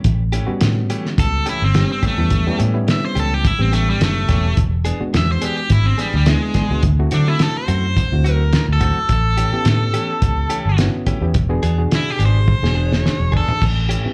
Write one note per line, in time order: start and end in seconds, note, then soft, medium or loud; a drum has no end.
0.04 0.38 A1 medium
0.04 kick loud
0.04 closed hi-hat medium
0.33 0.52 E3 medium
0.33 0.51 A3 medium
0.33 0.51 C#4 medium
0.33 0.50 G4 medium
0.33 closed hi-hat medium
0.47 1.49 G3 medium
0.47 1.49 B3 medium
0.47 1.49 C#4 medium
0.47 1.49 F#4 loud
0.47 muted fingered electric bass stroke soft
0.61 0.84 A2 medium
0.61 snare loud
0.61 closed hi-hat medium
0.90 1.08 E3 medium
0.90 1.08 A3 medium
0.90 1.08 C#4 medium
0.90 1.07 G4 medium
0.90 closed hi-hat medium
1.05 snare soft
1.18 1.40 C#2 loud
1.18 1.46 A4 loud
1.18 kick loud
1.18 closed hi-hat medium
1.46 1.65 E3 soft
1.46 1.64 A3 medium
1.46 1.64 C#4 medium
1.46 1.62 E4 medium
1.46 1.64 G4 medium
1.46 closed hi-hat medium
1.62 1.84 G1 loud
1.62 1.90 C4 medium
1.74 2.14 G3 medium
1.74 2.14 B3 medium
1.74 2.14 C#4 medium
1.74 2.14 G4 medium
1.74 snare loud
1.74 closed hi-hat medium
1.92 2.04 C4 medium
2.03 2.21 E3 medium
2.03 2.21 A3 medium
2.03 2.21 C#4 medium
2.03 2.20 G4 medium
2.03 kick medium
2.03 closed hi-hat medium
2.07 2.60 A3 medium
2.18 2.50 E2 medium
2.18 2.43 G3 medium
2.18 2.43 B3 medium
2.18 2.43 C#4 medium
2.18 2.43 E4 medium
2.30 kick loud
2.30 closed hi-hat medium
2.47 2.72 G3 medium
2.47 2.72 B3 medium
2.47 2.72 C#4 medium
2.47 2.72 E4 medium
2.59 2.82 A2 medium
2.59 2.78 E3 medium
2.59 2.77 A3 medium
2.59 2.77 C#4 medium
2.59 2.76 G4 medium
2.59 closed hi-hat medium
2.74 3.50 G3 medium
2.74 3.50 B3 medium
2.74 3.50 C#4 medium
2.74 3.50 E4 medium
2.88 3.04 E5 medium
2.88 snare loud
2.88 closed hi-hat medium
3.05 3.20 C5 medium
3.15 3.50 C#2 medium
3.15 3.34 E3 medium
3.15 3.34 A3 medium
3.15 3.33 C#4 medium
3.15 3.33 G4 medium
3.15 closed hi-hat medium
3.20 3.34 A4 medium
3.34 3.47 G4 medium
3.45 3.60 E4 medium
3.45 kick loud
3.45 closed hi-hat medium
3.59 3.92 A1 medium
3.59 4.58 G3 medium
3.59 4.58 B3 medium
3.59 3.73 C4 medium
3.59 4.57 C#4 medium
3.59 4.57 G4 medium
3.73 3.91 E3 medium
3.73 3.91 A3 medium
3.73 3.88 A3 medium
3.73 3.91 C#4 medium
3.73 3.90 G4 medium
3.73 closed hi-hat medium
3.90 4.02 G3 medium
4.01 4.26 F#1 medium
4.01 4.57 A3 loud
4.01 snare loud
4.01 closed hi-hat medium
4.29 4.54 E1 medium
4.29 4.47 E3 soft
4.29 4.47 A3 soft
4.29 4.47 C#4 medium
4.29 4.46 G4 medium
4.29 kick medium
4.29 snare soft
4.29 closed hi-hat medium
4.57 4.91 E1 medium
4.57 kick loud
4.57 closed hi-hat medium
4.85 5.04 E3 medium
4.85 5.03 B3 medium
4.85 5.03 D4 medium
4.85 5.03 G#4 medium
4.85 closed hi-hat medium
5.00 6.02 G#3 medium
5.00 6.02 B3 medium
5.00 6.02 D4 medium
5.00 6.02 F#4 medium
5.00 muted fingered electric bass stroke soft
5.14 5.36 E2 medium
5.14 5.30 E5 medium
5.14 snare loud
5.14 closed hi-hat medium
5.32 5.43 C5 medium
5.42 5.60 E3 medium
5.42 5.60 B3 soft
5.42 5.60 D4 medium
5.42 5.56 G4 loud
5.42 5.59 G#4 medium
5.42 closed hi-hat medium
5.57 5.70 G4 medium
5.70 5.92 G#1 loud
5.70 5.86 E4 medium
5.70 kick loud
5.70 closed hi-hat medium
5.86 5.99 C4 medium
5.98 6.17 E3 medium
5.98 6.14 G3 medium
5.98 6.17 B3 soft
5.98 6.16 D4 medium
5.98 6.16 G#4 medium
5.98 closed hi-hat medium
6.14 6.36 D2 loud
6.14 6.28 G3 medium
6.26 6.66 G#3 medium
6.26 6.83 G#3 loud
6.26 6.66 B3 medium
6.26 6.66 D4 medium
6.26 6.66 E4 medium
6.26 snare loud
6.26 closed hi-hat medium
6.54 6.73 E3 medium
6.54 6.73 B3 medium
6.54 6.73 D4 medium
6.54 6.72 G#4 medium
6.54 kick medium
6.54 snare soft
6.54 closed hi-hat medium
6.71 6.81 C#2 medium
6.71 6.84 G#3 medium
6.71 6.84 B3 medium
6.71 6.84 D4 medium
6.71 6.84 F#4 medium
6.83 7.05 D2 medium
6.83 kick loud
6.83 closed hi-hat medium
6.99 7.24 A3 medium
6.99 7.24 C4 medium
6.99 7.24 E4 medium
6.99 7.24 F#4 loud
7.11 7.34 D3 medium
7.11 7.30 F#3 medium
7.11 7.30 A3 medium
7.11 7.30 C4 medium
7.11 7.28 D4 medium
7.11 7.29 F#4 medium
7.11 closed hi-hat medium
7.27 8.03 A3 medium
7.27 8.03 C4 medium
7.27 8.03 E4 medium
7.27 7.40 E4 loud
7.27 8.03 F#4 medium
7.39 7.56 A4 medium
7.39 snare loud
7.39 closed hi-hat medium
7.57 8.33 C5 medium
7.68 8.02 F#2 medium
7.68 7.87 F#3 medium
7.68 7.86 A3 medium
7.68 7.86 C4 medium
7.68 7.86 F#4 medium
7.68 closed hi-hat medium
7.97 kick loud
7.97 closed hi-hat medium
8.12 8.56 D2 medium
8.12 9.10 A3 medium
8.12 9.10 C4 medium
8.12 9.10 E4 medium
8.12 9.10 F#4 medium
8.24 8.43 F#3 medium
8.24 8.43 A3 medium
8.24 8.42 C4 medium
8.24 8.42 F#4 medium
8.24 closed hi-hat medium
8.33 8.66 A#4 medium
8.53 snare loud
8.53 closed hi-hat medium
8.68 8.90 D2 medium
8.73 8.83 A4 medium
8.81 9.00 F#3 medium
8.81 8.99 A3 medium
8.81 8.99 C4 medium
8.81 8.98 F#4 medium
8.81 9.10 A4 medium
8.81 kick medium
8.81 closed hi-hat medium
9.09 9.43 A1 medium
9.09 10.77 A4 medium
9.09 kick loud
9.09 closed hi-hat medium
9.37 9.56 E3 medium
9.37 9.56 A3 medium
9.37 9.56 C#4 medium
9.37 9.55 G4 medium
9.37 closed hi-hat medium
9.53 10.55 B3 medium
9.53 10.55 C#4 medium
9.53 10.54 E4 medium
9.53 10.54 G4 medium
9.53 muted fingered electric bass stroke soft
9.65 9.88 A2 loud
9.65 snare medium
9.65 closed hi-hat medium
9.94 10.13 E3 medium
9.94 10.12 A3 medium
9.94 10.12 C#4 medium
9.94 10.12 G4 medium
9.94 closed hi-hat medium
10.22 10.44 C#2 loud
10.22 kick loud
10.22 closed hi-hat medium
10.50 10.69 E3 medium
10.50 10.69 A3 medium
10.50 10.68 C#4 medium
10.50 10.68 G4 medium
10.50 closed hi-hat medium
10.65 10.88 G1 medium
10.78 11.18 B3 medium
10.78 11.18 C#4 medium
10.78 11.18 E4 medium
10.78 11.18 F#4 medium
10.78 snare loud
10.78 closed hi-hat medium
11.07 11.26 E3 medium
11.07 11.25 A3 medium
11.07 11.25 C#4 medium
11.07 11.25 G4 medium
11.07 kick medium
11.07 closed hi-hat medium
11.21 11.32 E2 medium
11.21 11.35 B3 medium
11.21 11.35 C#4 medium
11.21 11.36 E4 medium
11.21 11.35 G4 medium
11.34 11.57 E1 loud
11.34 kick loud
11.34 closed hi-hat medium
11.49 11.75 B3 loud
11.49 11.75 D4 medium
11.49 11.75 F#4 medium
11.49 11.76 G#4 loud
11.63 11.85 E2 medium
11.63 11.82 B3 medium
11.63 11.81 D4 medium
11.63 11.81 G#4 medium
11.63 closed hi-hat medium
11.78 12.55 B2 medium
11.78 12.55 D4 medium
11.78 12.55 F#4 medium
11.78 12.55 G#4 medium
11.92 12.10 E4 medium
11.92 snare loud
11.92 closed hi-hat medium
12.10 12.22 G4 medium
12.19 12.53 G#1 medium
12.19 12.38 B3 medium
12.19 12.38 D4 medium
12.19 12.37 G#4 medium
12.19 closed hi-hat medium
12.25 13.33 C5 loud
12.48 kick loud
12.48 high tom medium
12.63 13.07 E1 medium
12.63 13.62 B2 medium
12.63 13.62 D4 medium
12.63 13.62 F#4 medium
12.63 13.62 G#4 medium
12.63 snare medium
12.75 12.95 B3 medium
12.75 12.94 D4 medium
12.75 12.94 G#4 medium
12.93 snare medium
13.06 snare medium
13.20 13.42 E1 medium
13.32 13.52 B3 medium
13.32 13.51 D4 medium
13.32 13.50 G#4 medium
13.32 kick loud
13.37 13.63 A4 medium
13.48 muted fingered electric bass stroke soft
13.48 floor tom medium
13.62 13.95 A1 medium
13.62 kick loud
13.62 crash medium
13.89 14.08 E3 medium
13.89 14.08 A3 medium
13.89 14.07 C#4 medium
13.89 14.07 G4 medium
13.89 closed hi-hat medium
14.04 14.13 B3 medium
14.04 14.13 C#4 medium
14.04 14.13 E4 medium
14.04 14.13 G4 medium
14.04 muted fingered electric bass stroke soft